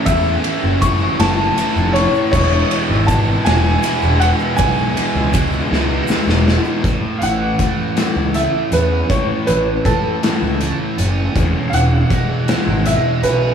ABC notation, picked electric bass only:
X:1
M:6/8
L:1/16
Q:3/8=53
K:A
V:1 name="Picked electric bass" clef=bass
E,,2 z F,,,3 F,,,2 z =F,,,2 z | E,,,2 z G,,,3 E,,,2 z E,,,2 z | B,,,2 z C,,3 C,,2 z E,,,2 z | A,,, z A,,,2 z3 C,,2 z E,,2 |
A,,, z A,,,2 z3 C,,2 z F,,,2 | E,,, z E,,,2 z3 G,,,2 z B,,,2 |]